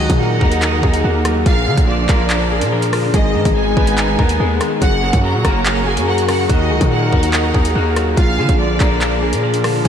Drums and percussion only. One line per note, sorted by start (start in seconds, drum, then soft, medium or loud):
0.10 kick medium
0.10 closed hi-hat medium
0.41 kick loud
0.52 closed hi-hat medium
0.62 clap loud
0.62 closed hi-hat medium
0.83 kick loud
0.94 closed hi-hat medium
1.25 cross-stick loud
1.25 closed hi-hat medium
1.46 kick loud
1.46 closed hi-hat medium
1.77 kick medium
1.77 closed hi-hat medium
2.09 kick loud
2.09 clap medium
2.09 closed hi-hat medium
2.30 clap loud
2.30 closed hi-hat medium
2.61 closed hi-hat medium
2.82 closed hi-hat medium
2.93 cross-stick loud
2.93 open hi-hat medium
3.14 kick loud
3.14 closed hi-hat medium
3.45 kick medium
3.45 closed hi-hat medium
3.77 kick loud
3.87 closed hi-hat medium
3.98 clap loud
3.98 closed hi-hat medium
4.19 kick loud
4.29 closed hi-hat medium
4.61 cross-stick loud
4.61 closed hi-hat medium
4.82 kick loud
4.82 closed hi-hat medium
5.13 kick medium
5.13 closed hi-hat medium
5.45 kick loud
5.45 cross-stick loud
5.45 closed hi-hat medium
5.66 clap loud
5.66 closed hi-hat medium
5.97 closed hi-hat medium
6.18 closed hi-hat medium
6.29 cross-stick loud
6.29 closed hi-hat medium
6.29 open hi-hat medium
6.49 kick loud
6.49 closed hi-hat medium
6.81 kick medium
6.81 closed hi-hat medium
7.12 kick loud
7.23 closed hi-hat medium
7.33 clap loud
7.33 closed hi-hat medium
7.54 kick loud
7.65 closed hi-hat medium
7.96 cross-stick loud
7.96 closed hi-hat medium
8.17 kick loud
8.17 closed hi-hat medium
8.49 kick medium
8.49 closed hi-hat medium
8.80 kick loud
8.80 clap medium
8.80 closed hi-hat medium
9.01 clap loud
9.01 closed hi-hat medium
9.33 closed hi-hat medium
9.54 closed hi-hat medium
9.64 cross-stick loud
9.64 open hi-hat medium